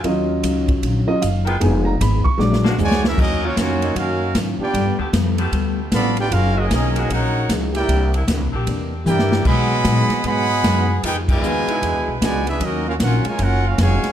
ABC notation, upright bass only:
X:1
M:4/4
L:1/8
Q:"Swing" 1/4=153
K:Ebm
V:1 name="Upright bass" clef=bass
E,,2 D,,2 B,,, z G,,,2 | F,,,2 A,,, z B,,,2 ^C,,2 | E,,2 F,,2 G,,2 A,, z | (3=G,, F,, =D,, F,,2 D,,2 =A,,,2 |
G,,,2 C,,2 B,,,2 D,,2 | =C,,2 (3=D,, C,, B,,, =E,,2 =G,,2 | =B,,2 _B,, z ^G,,2 ^F,,2 | F,,2 E,, z (3=E,, =D,, =B,,, _D,,2 |
E,,2 B,,, z G,,,2 F,,, z |]